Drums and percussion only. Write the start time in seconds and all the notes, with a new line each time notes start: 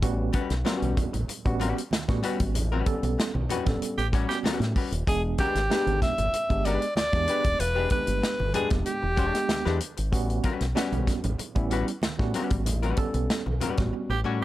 0.02 kick, closed hi-hat, muted conga
0.33 kick, closed hi-hat, high conga
0.50 snare, closed hi-hat
0.66 snare, closed hi-hat, muted conga
0.82 closed hi-hat, high conga
0.97 kick, closed hi-hat, muted conga, low conga
1.14 closed hi-hat, low conga
1.29 closed hi-hat
1.46 kick, closed hi-hat
1.61 closed hi-hat, muted conga
1.78 closed hi-hat
1.91 snare, closed hi-hat, muted conga, high conga
2.08 kick, snare, closed hi-hat
2.23 closed hi-hat, muted conga
2.40 kick, closed hi-hat
2.55 closed hi-hat, low conga
2.86 kick, closed hi-hat, muted conga, high conga
3.03 closed hi-hat
3.19 snare, closed hi-hat
3.35 high conga
3.49 closed hi-hat, low conga
3.66 kick, snare, closed hi-hat, low conga
3.82 closed hi-hat
3.98 closed hi-hat
4.13 kick, closed hi-hat
4.31 snare, closed hi-hat
4.43 snare, closed hi-hat, high conga
4.62 snare, closed hi-hat
4.76 kick, open hi-hat, muted conga
4.92 closed hi-hat
5.07 kick, closed hi-hat, muted conga
5.38 kick, closed hi-hat, high conga
5.55 snare, closed hi-hat
5.71 snare, closed hi-hat
5.87 closed hi-hat, high conga
6.02 kick, snare, closed hi-hat, muted conga, low conga
6.18 closed hi-hat, low conga
6.33 closed hi-hat, muted conga
6.50 kick, closed hi-hat
6.65 closed hi-hat
6.82 closed hi-hat
6.96 snare, closed hi-hat, high conga
7.13 kick, snare, closed hi-hat
7.28 closed hi-hat, muted conga
7.44 kick, closed hi-hat
7.60 closed hi-hat, muted conga
7.90 kick, closed hi-hat, muted conga, high conga
8.07 closed hi-hat
8.23 snare, closed hi-hat
8.40 high conga
8.54 closed hi-hat, muted conga, low conga
8.70 kick, snare, closed hi-hat, low conga
8.86 closed hi-hat, muted conga
9.17 kick, closed hi-hat, muted conga
9.35 snare, closed hi-hat
9.49 snare, closed hi-hat, high conga
9.66 snare
9.80 closed hi-hat, muted conga
9.97 closed hi-hat
10.13 kick, closed hi-hat
10.30 closed hi-hat
10.43 kick, closed hi-hat, high conga
10.60 snare, closed hi-hat
10.77 snare, closed hi-hat
10.92 closed hi-hat, high conga
11.07 kick, snare, closed hi-hat, low conga
11.24 closed hi-hat, low conga
11.39 closed hi-hat, muted conga
11.55 kick, closed hi-hat
11.71 closed hi-hat, muted conga
11.88 closed hi-hat
12.02 snare, closed hi-hat, muted conga, high conga
12.19 kick, snare
12.34 closed hi-hat, muted conga
12.50 kick, closed hi-hat
12.66 closed hi-hat, low conga
12.83 closed hi-hat
12.97 kick, closed hi-hat, muted conga, high conga
13.14 closed hi-hat
13.30 snare, closed hi-hat, muted conga
13.46 high conga
13.61 closed hi-hat, muted conga, low conga
13.77 kick, snare, closed hi-hat, low conga